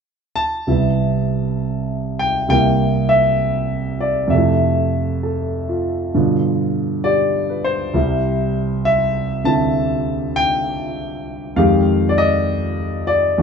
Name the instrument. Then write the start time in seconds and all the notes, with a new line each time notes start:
grand piano
0.36 A5
0.67 C2 C3 B3 E4
2.19 G5
2.48 C2 C3 A#3 G5
2.53 E4
3.09 E5
4.00 D5
4.27 F2 C3 E5
4.34 A3 E4
5.23 A4
5.69 F4
6.14 G2 B2 D3 F4
7.04 G4 D5
7.49 B4
7.64 C5
7.93 C2 C3 G3 E4
8.85 E5
9.44 D3 C4 E4 A5
10.36 G5
11.56 F2 D#3 G#3 G4 F5
12.09 D5
12.18 D#5
13.07 D5
13.38 E2 E3 G#3 D4 E4 F#4